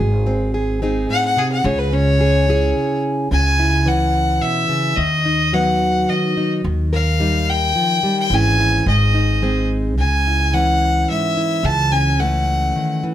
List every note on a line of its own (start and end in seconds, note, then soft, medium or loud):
0.00 1.05 G#1 loud
0.00 1.09 G#2 medium
0.00 0.54 G#4 medium
0.27 0.81 C4 medium
0.54 0.83 G#4 medium
0.82 1.62 C4 medium
0.82 1.62 D#4 medium
0.82 1.65 G#4 medium
1.09 1.37 A2 medium
1.09 1.23 F#5 medium
1.25 1.40 F#5 medium
1.37 1.64 C3 medium
1.37 1.51 G#4 medium
1.52 1.67 F#5 medium
1.64 2.71 C#2 loud
1.64 3.28 C#3 medium
1.64 2.20 G#4 medium
1.64 1.80 C#5 medium
1.79 1.94 B4 medium
1.93 2.47 C#4 medium
1.93 3.00 C#5 loud
2.21 2.48 G#4 medium
2.48 3.28 C#4 medium
2.48 3.28 E4 medium
2.48 3.29 G#4 medium
3.31 4.38 C#2 medium
3.31 3.87 C#3 medium
3.31 3.89 G#5 loud
3.60 4.95 E4 medium
3.86 4.97 E3 medium
3.86 4.94 C#4 medium
3.86 4.44 F#5 medium
4.41 4.69 B2 medium
4.41 4.98 E5 medium
4.69 4.97 C#3 medium
4.97 6.04 D#2 medium
4.97 6.08 D#3 medium
4.97 5.55 D#5 medium
5.26 6.36 D#4 soft
5.53 6.61 F#3 medium
5.53 6.61 B3 medium
5.53 6.11 F#5 medium
6.09 6.61 D#3 medium
6.09 6.51 D#5 medium
6.37 6.61 D#4 medium
6.64 7.71 D#2 medium
6.64 8.28 D#3 medium
6.93 8.28 A#4 medium
6.93 7.51 F5 medium
7.20 7.75 G3 medium
7.20 8.28 D#4 medium
7.50 8.18 G5 medium
7.75 8.03 F3 medium
8.03 8.31 G3 medium
8.20 8.35 G5 medium
8.30 8.83 G#1 medium
8.30 8.83 G#2 medium
8.30 8.87 E3 medium
8.30 8.84 C#4 medium
8.30 8.59 E4 medium
8.30 8.88 G#5 loud
8.35 11.85 G#4 medium
8.60 8.84 E4 medium
8.86 9.97 G#1 medium
8.86 9.94 G#2 medium
8.86 9.66 D#5 medium
9.14 9.94 D#4 medium
9.42 9.94 G#3 medium
9.42 9.94 C4 medium
9.97 11.04 C#2 medium
9.97 10.53 C#3 medium
9.97 10.55 G#5 medium
10.27 11.36 E4 medium
10.54 12.18 E3 medium
10.54 11.93 C#4 medium
10.54 11.09 F#5 medium
11.09 11.61 G#2 medium
11.09 11.67 E5 medium
11.37 11.61 E4 medium
11.63 12.70 C#2 medium
11.63 12.19 C#3 medium
11.63 11.94 A5 loud
11.92 13.14 C#4 medium
11.92 12.21 G#5 medium
12.19 13.02 E3 medium
12.19 13.14 A3 medium
12.19 13.02 F#5 medium
12.76 13.03 D#3 medium
13.04 13.14 E3 medium